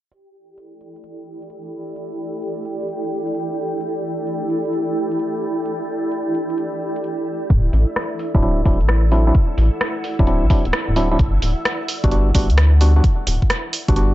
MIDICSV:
0, 0, Header, 1, 6, 480
1, 0, Start_track
1, 0, Key_signature, 1, "minor"
1, 0, Tempo, 461538
1, 121, Time_signature, 4, 2, 24, 8
1, 14709, End_track
2, 0, Start_track
2, 0, Title_t, "Ambient pad"
2, 0, Program_c, 0, 92
2, 120, Note_on_c, 0, 64, 83
2, 221, Note_on_c, 0, 69, 77
2, 251, Note_on_c, 0, 74, 92
2, 581, Note_on_c, 0, 79, 86
2, 7801, Note_off_c, 0, 79, 0
2, 8222, Note_on_c, 0, 78, 85
2, 14709, Note_off_c, 0, 64, 0
2, 14709, Note_off_c, 0, 69, 0
2, 14709, Note_off_c, 0, 74, 0
2, 14709, Note_off_c, 0, 78, 0
2, 14709, End_track
3, 0, Start_track
3, 0, Title_t, "String machine"
3, 0, Program_c, 1, 50
3, 121, Note_on_c, 1, 67, 84
3, 121, Note_on_c, 1, 79, 84
3, 7801, Note_on_c, 1, 76, 86
3, 7802, Note_on_c, 1, 64, 89
3, 7814, Note_off_c, 1, 67, 0
3, 7814, Note_off_c, 1, 79, 0
3, 14709, Note_off_c, 1, 64, 0
3, 14709, Note_off_c, 1, 76, 0
3, 14709, End_track
4, 0, Start_track
4, 0, Title_t, "Synth stab"
4, 0, Program_c, 2, 62
4, 8680, Note_on_c, 2, 54, 82
4, 8680, Note_on_c, 2, 60, 76
4, 8680, Note_on_c, 2, 62, 75
4, 8680, Note_on_c, 2, 64, 92
4, 8749, Note_off_c, 2, 54, 0
4, 8749, Note_off_c, 2, 60, 0
4, 8749, Note_off_c, 2, 62, 0
4, 8749, Note_off_c, 2, 64, 0
4, 8761, Note_on_c, 2, 54, 88
4, 8761, Note_on_c, 2, 60, 82
4, 8761, Note_on_c, 2, 62, 80
4, 8761, Note_on_c, 2, 64, 101
4, 8958, Note_off_c, 2, 54, 0
4, 8958, Note_off_c, 2, 60, 0
4, 8958, Note_off_c, 2, 62, 0
4, 8958, Note_off_c, 2, 64, 0
4, 9001, Note_on_c, 2, 54, 75
4, 9001, Note_on_c, 2, 60, 73
4, 9001, Note_on_c, 2, 62, 70
4, 9001, Note_on_c, 2, 64, 84
4, 9147, Note_off_c, 2, 54, 0
4, 9147, Note_off_c, 2, 60, 0
4, 9147, Note_off_c, 2, 62, 0
4, 9147, Note_off_c, 2, 64, 0
4, 9481, Note_on_c, 2, 54, 80
4, 9481, Note_on_c, 2, 60, 74
4, 9481, Note_on_c, 2, 62, 73
4, 9481, Note_on_c, 2, 64, 92
4, 9616, Note_off_c, 2, 54, 0
4, 9616, Note_off_c, 2, 60, 0
4, 9616, Note_off_c, 2, 62, 0
4, 9616, Note_off_c, 2, 64, 0
4, 9640, Note_on_c, 2, 54, 75
4, 9640, Note_on_c, 2, 60, 70
4, 9640, Note_on_c, 2, 62, 71
4, 9640, Note_on_c, 2, 64, 83
4, 9714, Note_off_c, 2, 54, 0
4, 9714, Note_off_c, 2, 60, 0
4, 9714, Note_off_c, 2, 62, 0
4, 9714, Note_off_c, 2, 64, 0
4, 10600, Note_on_c, 2, 54, 83
4, 10600, Note_on_c, 2, 60, 76
4, 10600, Note_on_c, 2, 62, 74
4, 10600, Note_on_c, 2, 64, 90
4, 10669, Note_off_c, 2, 54, 0
4, 10669, Note_off_c, 2, 60, 0
4, 10669, Note_off_c, 2, 62, 0
4, 10669, Note_off_c, 2, 64, 0
4, 10681, Note_on_c, 2, 54, 89
4, 10681, Note_on_c, 2, 60, 80
4, 10681, Note_on_c, 2, 62, 81
4, 10681, Note_on_c, 2, 64, 99
4, 10878, Note_off_c, 2, 54, 0
4, 10878, Note_off_c, 2, 60, 0
4, 10878, Note_off_c, 2, 62, 0
4, 10878, Note_off_c, 2, 64, 0
4, 10921, Note_on_c, 2, 54, 80
4, 10921, Note_on_c, 2, 60, 71
4, 10921, Note_on_c, 2, 62, 72
4, 10921, Note_on_c, 2, 64, 87
4, 11067, Note_off_c, 2, 54, 0
4, 11067, Note_off_c, 2, 60, 0
4, 11067, Note_off_c, 2, 62, 0
4, 11067, Note_off_c, 2, 64, 0
4, 11401, Note_on_c, 2, 54, 79
4, 11401, Note_on_c, 2, 60, 76
4, 11401, Note_on_c, 2, 62, 74
4, 11401, Note_on_c, 2, 64, 89
4, 11536, Note_off_c, 2, 54, 0
4, 11536, Note_off_c, 2, 60, 0
4, 11536, Note_off_c, 2, 62, 0
4, 11536, Note_off_c, 2, 64, 0
4, 11559, Note_on_c, 2, 60, 71
4, 11560, Note_on_c, 2, 54, 75
4, 11560, Note_on_c, 2, 62, 68
4, 11560, Note_on_c, 2, 64, 86
4, 11631, Note_off_c, 2, 54, 0
4, 11631, Note_off_c, 2, 60, 0
4, 11631, Note_off_c, 2, 62, 0
4, 11631, Note_off_c, 2, 64, 0
4, 12519, Note_on_c, 2, 55, 79
4, 12519, Note_on_c, 2, 59, 76
4, 12519, Note_on_c, 2, 62, 75
4, 12519, Note_on_c, 2, 66, 90
4, 12588, Note_off_c, 2, 55, 0
4, 12588, Note_off_c, 2, 59, 0
4, 12588, Note_off_c, 2, 62, 0
4, 12588, Note_off_c, 2, 66, 0
4, 12600, Note_on_c, 2, 55, 90
4, 12600, Note_on_c, 2, 59, 84
4, 12600, Note_on_c, 2, 62, 83
4, 12601, Note_on_c, 2, 66, 99
4, 12798, Note_off_c, 2, 55, 0
4, 12798, Note_off_c, 2, 59, 0
4, 12798, Note_off_c, 2, 62, 0
4, 12798, Note_off_c, 2, 66, 0
4, 12841, Note_on_c, 2, 55, 75
4, 12841, Note_on_c, 2, 59, 70
4, 12841, Note_on_c, 2, 62, 71
4, 12841, Note_on_c, 2, 66, 82
4, 12987, Note_off_c, 2, 55, 0
4, 12987, Note_off_c, 2, 59, 0
4, 12987, Note_off_c, 2, 62, 0
4, 12987, Note_off_c, 2, 66, 0
4, 13321, Note_on_c, 2, 55, 81
4, 13321, Note_on_c, 2, 62, 77
4, 13321, Note_on_c, 2, 66, 88
4, 13322, Note_on_c, 2, 59, 72
4, 13456, Note_off_c, 2, 55, 0
4, 13456, Note_off_c, 2, 59, 0
4, 13456, Note_off_c, 2, 62, 0
4, 13456, Note_off_c, 2, 66, 0
4, 13481, Note_on_c, 2, 55, 76
4, 13481, Note_on_c, 2, 59, 73
4, 13481, Note_on_c, 2, 62, 72
4, 13481, Note_on_c, 2, 66, 82
4, 13555, Note_off_c, 2, 55, 0
4, 13555, Note_off_c, 2, 59, 0
4, 13555, Note_off_c, 2, 62, 0
4, 13555, Note_off_c, 2, 66, 0
4, 14440, Note_on_c, 2, 55, 84
4, 14440, Note_on_c, 2, 59, 75
4, 14440, Note_on_c, 2, 62, 74
4, 14440, Note_on_c, 2, 66, 91
4, 14509, Note_off_c, 2, 55, 0
4, 14509, Note_off_c, 2, 59, 0
4, 14509, Note_off_c, 2, 62, 0
4, 14509, Note_off_c, 2, 66, 0
4, 14521, Note_on_c, 2, 55, 91
4, 14521, Note_on_c, 2, 66, 101
4, 14522, Note_on_c, 2, 59, 85
4, 14522, Note_on_c, 2, 62, 81
4, 14709, Note_off_c, 2, 55, 0
4, 14709, Note_off_c, 2, 59, 0
4, 14709, Note_off_c, 2, 62, 0
4, 14709, Note_off_c, 2, 66, 0
4, 14709, End_track
5, 0, Start_track
5, 0, Title_t, "Analog synth bass"
5, 0, Program_c, 3, 38
5, 7801, Note_on_c, 3, 26, 101
5, 8004, Note_off_c, 3, 26, 0
5, 8040, Note_on_c, 3, 33, 101
5, 8163, Note_off_c, 3, 33, 0
5, 8680, Note_on_c, 3, 26, 99
5, 8972, Note_off_c, 3, 26, 0
5, 9001, Note_on_c, 3, 26, 82
5, 9159, Note_on_c, 3, 33, 93
5, 9175, Note_off_c, 3, 26, 0
5, 9691, Note_off_c, 3, 33, 0
5, 9960, Note_on_c, 3, 33, 97
5, 10084, Note_off_c, 3, 33, 0
5, 10600, Note_on_c, 3, 26, 98
5, 10839, Note_on_c, 3, 33, 97
5, 10855, Note_off_c, 3, 26, 0
5, 10902, Note_off_c, 3, 33, 0
5, 11079, Note_on_c, 3, 26, 101
5, 11142, Note_off_c, 3, 26, 0
5, 11319, Note_on_c, 3, 26, 81
5, 11611, Note_off_c, 3, 26, 0
5, 11641, Note_on_c, 3, 31, 101
5, 11844, Note_off_c, 3, 31, 0
5, 11880, Note_on_c, 3, 26, 97
5, 12003, Note_off_c, 3, 26, 0
5, 12520, Note_on_c, 3, 31, 98
5, 12811, Note_off_c, 3, 31, 0
5, 12840, Note_on_c, 3, 31, 80
5, 12999, Note_on_c, 3, 38, 95
5, 13014, Note_off_c, 3, 31, 0
5, 13531, Note_off_c, 3, 38, 0
5, 13800, Note_on_c, 3, 26, 101
5, 13924, Note_off_c, 3, 26, 0
5, 14440, Note_on_c, 3, 31, 99
5, 14695, Note_off_c, 3, 31, 0
5, 14709, End_track
6, 0, Start_track
6, 0, Title_t, "Drums"
6, 121, Note_on_c, 9, 42, 64
6, 225, Note_off_c, 9, 42, 0
6, 600, Note_on_c, 9, 42, 64
6, 704, Note_off_c, 9, 42, 0
6, 840, Note_on_c, 9, 42, 62
6, 944, Note_off_c, 9, 42, 0
6, 999, Note_on_c, 9, 42, 35
6, 1080, Note_off_c, 9, 42, 0
6, 1080, Note_on_c, 9, 42, 63
6, 1184, Note_off_c, 9, 42, 0
6, 1479, Note_on_c, 9, 42, 62
6, 1560, Note_off_c, 9, 42, 0
6, 1560, Note_on_c, 9, 42, 64
6, 1664, Note_off_c, 9, 42, 0
6, 2040, Note_on_c, 9, 42, 59
6, 2144, Note_off_c, 9, 42, 0
6, 2520, Note_on_c, 9, 42, 60
6, 2624, Note_off_c, 9, 42, 0
6, 2760, Note_on_c, 9, 42, 61
6, 2864, Note_off_c, 9, 42, 0
6, 2919, Note_on_c, 9, 42, 35
6, 3000, Note_off_c, 9, 42, 0
6, 3000, Note_on_c, 9, 42, 62
6, 3104, Note_off_c, 9, 42, 0
6, 3399, Note_on_c, 9, 42, 63
6, 3480, Note_off_c, 9, 42, 0
6, 3480, Note_on_c, 9, 42, 61
6, 3584, Note_off_c, 9, 42, 0
6, 3961, Note_on_c, 9, 42, 61
6, 4065, Note_off_c, 9, 42, 0
6, 4441, Note_on_c, 9, 42, 60
6, 4545, Note_off_c, 9, 42, 0
6, 4681, Note_on_c, 9, 42, 62
6, 4785, Note_off_c, 9, 42, 0
6, 4839, Note_on_c, 9, 42, 32
6, 4921, Note_off_c, 9, 42, 0
6, 4921, Note_on_c, 9, 42, 60
6, 5025, Note_off_c, 9, 42, 0
6, 5320, Note_on_c, 9, 42, 61
6, 5401, Note_off_c, 9, 42, 0
6, 5401, Note_on_c, 9, 42, 63
6, 5505, Note_off_c, 9, 42, 0
6, 5881, Note_on_c, 9, 42, 63
6, 5985, Note_off_c, 9, 42, 0
6, 6361, Note_on_c, 9, 42, 60
6, 6465, Note_off_c, 9, 42, 0
6, 6600, Note_on_c, 9, 42, 61
6, 6704, Note_off_c, 9, 42, 0
6, 6760, Note_on_c, 9, 42, 35
6, 6841, Note_off_c, 9, 42, 0
6, 6841, Note_on_c, 9, 42, 61
6, 6945, Note_off_c, 9, 42, 0
6, 7240, Note_on_c, 9, 42, 61
6, 7322, Note_off_c, 9, 42, 0
6, 7322, Note_on_c, 9, 42, 62
6, 7426, Note_off_c, 9, 42, 0
6, 7801, Note_on_c, 9, 36, 115
6, 7801, Note_on_c, 9, 42, 64
6, 7905, Note_off_c, 9, 36, 0
6, 7905, Note_off_c, 9, 42, 0
6, 8041, Note_on_c, 9, 46, 97
6, 8145, Note_off_c, 9, 46, 0
6, 8281, Note_on_c, 9, 37, 110
6, 8281, Note_on_c, 9, 42, 64
6, 8385, Note_off_c, 9, 37, 0
6, 8385, Note_off_c, 9, 42, 0
6, 8521, Note_on_c, 9, 46, 83
6, 8625, Note_off_c, 9, 46, 0
6, 8680, Note_on_c, 9, 36, 100
6, 8680, Note_on_c, 9, 42, 35
6, 8761, Note_off_c, 9, 42, 0
6, 8761, Note_on_c, 9, 42, 65
6, 8784, Note_off_c, 9, 36, 0
6, 8865, Note_off_c, 9, 42, 0
6, 9001, Note_on_c, 9, 36, 105
6, 9002, Note_on_c, 9, 46, 97
6, 9105, Note_off_c, 9, 36, 0
6, 9106, Note_off_c, 9, 46, 0
6, 9160, Note_on_c, 9, 42, 66
6, 9241, Note_off_c, 9, 42, 0
6, 9241, Note_on_c, 9, 37, 118
6, 9241, Note_on_c, 9, 42, 66
6, 9345, Note_off_c, 9, 37, 0
6, 9345, Note_off_c, 9, 42, 0
6, 9480, Note_on_c, 9, 46, 88
6, 9584, Note_off_c, 9, 46, 0
6, 9720, Note_on_c, 9, 42, 67
6, 9721, Note_on_c, 9, 36, 114
6, 9824, Note_off_c, 9, 42, 0
6, 9825, Note_off_c, 9, 36, 0
6, 9960, Note_on_c, 9, 46, 102
6, 10064, Note_off_c, 9, 46, 0
6, 10201, Note_on_c, 9, 37, 106
6, 10201, Note_on_c, 9, 42, 65
6, 10305, Note_off_c, 9, 37, 0
6, 10305, Note_off_c, 9, 42, 0
6, 10441, Note_on_c, 9, 46, 85
6, 10545, Note_off_c, 9, 46, 0
6, 10600, Note_on_c, 9, 36, 100
6, 10600, Note_on_c, 9, 42, 37
6, 10681, Note_off_c, 9, 42, 0
6, 10681, Note_on_c, 9, 42, 66
6, 10704, Note_off_c, 9, 36, 0
6, 10785, Note_off_c, 9, 42, 0
6, 10920, Note_on_c, 9, 46, 103
6, 10921, Note_on_c, 9, 36, 102
6, 11024, Note_off_c, 9, 46, 0
6, 11025, Note_off_c, 9, 36, 0
6, 11079, Note_on_c, 9, 42, 67
6, 11160, Note_off_c, 9, 42, 0
6, 11160, Note_on_c, 9, 37, 115
6, 11160, Note_on_c, 9, 42, 69
6, 11264, Note_off_c, 9, 37, 0
6, 11264, Note_off_c, 9, 42, 0
6, 11400, Note_on_c, 9, 46, 92
6, 11504, Note_off_c, 9, 46, 0
6, 11640, Note_on_c, 9, 42, 68
6, 11641, Note_on_c, 9, 36, 112
6, 11744, Note_off_c, 9, 42, 0
6, 11745, Note_off_c, 9, 36, 0
6, 11879, Note_on_c, 9, 46, 102
6, 11983, Note_off_c, 9, 46, 0
6, 12120, Note_on_c, 9, 37, 103
6, 12120, Note_on_c, 9, 42, 65
6, 12224, Note_off_c, 9, 37, 0
6, 12224, Note_off_c, 9, 42, 0
6, 12360, Note_on_c, 9, 46, 93
6, 12464, Note_off_c, 9, 46, 0
6, 12518, Note_on_c, 9, 42, 38
6, 12519, Note_on_c, 9, 36, 99
6, 12599, Note_off_c, 9, 42, 0
6, 12599, Note_on_c, 9, 42, 69
6, 12623, Note_off_c, 9, 36, 0
6, 12703, Note_off_c, 9, 42, 0
6, 12840, Note_on_c, 9, 36, 98
6, 12840, Note_on_c, 9, 46, 107
6, 12944, Note_off_c, 9, 36, 0
6, 12944, Note_off_c, 9, 46, 0
6, 12998, Note_on_c, 9, 42, 69
6, 13079, Note_off_c, 9, 42, 0
6, 13079, Note_on_c, 9, 37, 114
6, 13079, Note_on_c, 9, 42, 67
6, 13183, Note_off_c, 9, 37, 0
6, 13183, Note_off_c, 9, 42, 0
6, 13319, Note_on_c, 9, 46, 94
6, 13423, Note_off_c, 9, 46, 0
6, 13560, Note_on_c, 9, 36, 112
6, 13560, Note_on_c, 9, 42, 66
6, 13664, Note_off_c, 9, 36, 0
6, 13664, Note_off_c, 9, 42, 0
6, 13800, Note_on_c, 9, 46, 109
6, 13904, Note_off_c, 9, 46, 0
6, 13959, Note_on_c, 9, 36, 58
6, 14040, Note_on_c, 9, 37, 107
6, 14040, Note_on_c, 9, 42, 67
6, 14063, Note_off_c, 9, 36, 0
6, 14144, Note_off_c, 9, 37, 0
6, 14144, Note_off_c, 9, 42, 0
6, 14280, Note_on_c, 9, 46, 94
6, 14384, Note_off_c, 9, 46, 0
6, 14440, Note_on_c, 9, 36, 98
6, 14440, Note_on_c, 9, 42, 38
6, 14520, Note_off_c, 9, 42, 0
6, 14520, Note_on_c, 9, 42, 69
6, 14544, Note_off_c, 9, 36, 0
6, 14624, Note_off_c, 9, 42, 0
6, 14709, End_track
0, 0, End_of_file